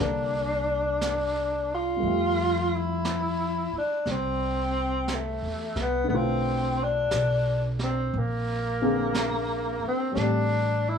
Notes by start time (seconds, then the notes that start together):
Already playing: D3 A#3
0.00 C2 D4 A4
1.01 brush sweep, snare, hi-hat pedal
1.74 F4
1.96 G3 A3
2.03 F2 G4 E5, brush sweep
2.76 E4
3.05 brush sweep, snare, hi-hat pedal
3.73 muted upright bass stroke
3.78 D4
4.06 C2, brush sweep, snare
4.11 C4
5.08 brush sweep, snare, hi-hat pedal
5.14 A3
5.42 E2
5.76 C2, snare
5.82 B3
6.04 D3
6.08 B1 A3 B3 B4, brush sweep
6.14 C4 F4
6.83 D4
7.11 B1, brush sweep, snare, hi-hat pedal
7.79 C4, snare
8.12 A#1, brush sweep
8.18 A#3
8.82 D3 A#3 C4 G#4
9.14 brush sweep, snare, hi-hat pedal
9.84 muted upright bass stroke
9.88 C4
10.11 A1 G3 A3 C#4
10.16 C4 D4, brush sweep, snare
10.22 G4
10.89 E4